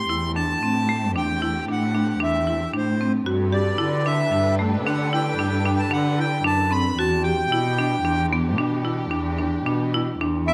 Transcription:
Already playing: string section A3 C4 G4, accordion C6
0.09 cello E2, marimba E4
0.36 marimba D4, accordion A5
0.63 cello A2, marimba C4
0.89 marimba A3
1.15 cello E2, marimba D4, accordion G5
1.42 marimba E4
1.68 cello A2, marimba D4, accordion F#5
1.95 marimba D4
2.20 cello E2, marimba D4, accordion E5
2.47 marimba E4
2.73 cello A2, marimba D4, accordion C5
3.01 marimba C4
3.26 cello G2, string section D4 G4 A4 B4, marimba F#4
3.52 marimba G4, accordion D5
3.78 cello D3, marimba E4
4.06 marimba D4, accordion E5
4.32 cello G2, marimba D4
4.59 marimba A3
4.85 cello D3, marimba D4, accordion F#5
5.13 marimba E4, accordion G5
5.38 cello G2, marimba D4
5.66 marimba D4
5.79 accordion A5
5.91 cello D3, marimba D4, accordion F#5
6.18 marimba E4, accordion G5
6.44 cello F#2, marimba D4, accordion A5
6.71 marimba C4, accordion B5
6.97 cello E2, string section E3 D4 G4, marimba F#4, accordion A5
7.23 marimba G4, accordion G5
7.50 cello B2, marimba E4
7.79 marimba D4
8.03 cello E2, marimba D4
8.33 marimba B3
8.57 cello B2, marimba D4
8.85 marimba E4
9.11 cello E2, marimba D4
9.39 marimba D4
9.66 cello B2, marimba D4
9.94 marimba E4
10.20 cello E2, marimba D4
10.47 marimba B3, accordion E5

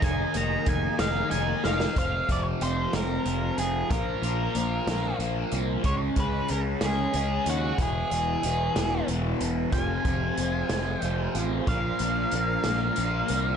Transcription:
Already playing: tonewheel organ A#3 D#4 G#4
0.02 fingered electric bass F1, distorted electric guitar D#3 A#3 D#4, lead electric guitar G#5, kick, closed hi-hat
0.34 fingered electric bass F1, distorted electric guitar D#3 A#3 D#4, lead electric guitar A#5, closed hi-hat
0.66 fingered electric bass F1, distorted electric guitar D#3 A#3 D#4, lead electric guitar G#5, kick, closed hi-hat
0.99 fingered electric bass F1, distorted electric guitar D#3 A#3 D#4, lead electric guitar F5, snare, closed hi-hat
1.31 fingered electric bass F1, distorted electric guitar D#3 A#3 D#4, lead electric guitar G#5, closed hi-hat
1.64 fingered electric bass F1, distorted electric guitar D#3 A#3 D#4, lead electric guitar F5, snare
1.80 snare
1.96 fingered electric bass F1, distorted electric guitar F2 C3 F3, lead electric guitar F5, kick, closed hi-hat
2.28 fingered electric bass F1, distorted electric guitar C3 F3, lead electric guitar D5, kick, closed hi-hat
2.61 fingered electric bass F1, distorted electric guitar F2 C3 F3, lead electric guitar C5, closed hi-hat
2.93 fingered electric bass F1, distorted electric guitar C3 F3, lead electric guitar A#4, snare, closed hi-hat
3.26 fingered electric bass F1, distorted electric guitar F2 C3 F3, closed hi-hat
3.58 fingered electric bass F1, distorted electric guitar C3 F3, lead electric guitar G#4, closed hi-hat
3.90 fingered electric bass A#1, distorted electric guitar A#2 F3 A#3, lead electric guitar A#4, kick, closed hi-hat
4.22 fingered electric bass A#1, distorted electric guitar F3 A#3, closed hi-hat
4.55 fingered electric bass A#1, distorted electric guitar A#2 F3 A#3, closed hi-hat
4.87 fingered electric bass A#1, distorted electric guitar F3 A#3, snare, closed hi-hat
5.19 fingered electric bass A#1, distorted electric guitar A#2 F3 A#3, closed hi-hat
5.52 fingered electric bass C2, distorted electric guitar F3 A#3, closed hi-hat
5.83 fingered electric bass C#2, distorted electric guitar C#3 G#3 C#4, lead electric guitar C#5, kick, closed hi-hat
6.16 fingered electric bass C#2, distorted electric guitar G#3 C#4, lead electric guitar B4, kick, closed hi-hat
6.48 fingered electric bass C#2, distorted electric guitar C#3 G#3 C#4, lead electric guitar A#4, closed hi-hat
6.81 fingered electric bass C#2, distorted electric guitar G#3 C#4, snare, closed hi-hat
6.86 lead electric guitar G#4
7.13 fingered electric bass C#2, distorted electric guitar C#3 G#3 C#4, closed hi-hat
7.46 fingered electric bass D#2, distorted electric guitar G#3 C#4, lead electric guitar F#4, closed hi-hat
7.78 fingered electric bass E1, distorted electric guitar E2 B2 E3, lead electric guitar G#4, kick, closed hi-hat
8.11 fingered electric bass E1, distorted electric guitar B2 E3, closed hi-hat
8.43 fingered electric bass E1, distorted electric guitar E2 B2 E3, closed hi-hat
8.76 fingered electric bass E1, distorted electric guitar B2 E3, snare, closed hi-hat
9.08 fingered electric bass E1, distorted electric guitar E2 B2 E3, closed hi-hat
9.41 fingered electric bass E1, distorted electric guitar B2 E3, closed hi-hat
9.72 fingered electric bass F1, distorted electric guitar F2 C3 F3, tonewheel organ C4 F4 G#4, lead electric guitar G#5, kick, closed hi-hat
10.05 fingered electric bass F1, distorted electric guitar C3 F3, kick, closed hi-hat
10.37 fingered electric bass F1, distorted electric guitar F2 C3 F3, closed hi-hat
10.69 fingered electric bass F1, distorted electric guitar C3 F3, snare, closed hi-hat
11.01 fingered electric bass F1, distorted electric guitar F2 C3, lead electric guitar G5, closed hi-hat
11.05 distorted electric guitar F3
11.35 fingered electric bass A1, distorted electric guitar C3 F3, closed hi-hat
11.67 fingered electric bass A#1, distorted electric guitar A#2 F3, tonewheel organ D4 A#4, lead electric guitar F5, kick, closed hi-hat
11.72 distorted electric guitar A#3
11.99 fingered electric bass A#1, distorted electric guitar A#3, closed hi-hat
12.04 distorted electric guitar F3
12.31 fingered electric bass A#1, distorted electric guitar A#2 F3, closed hi-hat
12.37 distorted electric guitar A#3
12.64 fingered electric bass A#1, distorted electric guitar F3 A#3, snare, closed hi-hat
12.96 fingered electric bass A#1, distorted electric guitar A#2 F3, closed hi-hat
13.00 distorted electric guitar A#3
13.28 fingered electric bass C2, distorted electric guitar A#3, closed hi-hat
13.33 distorted electric guitar F3

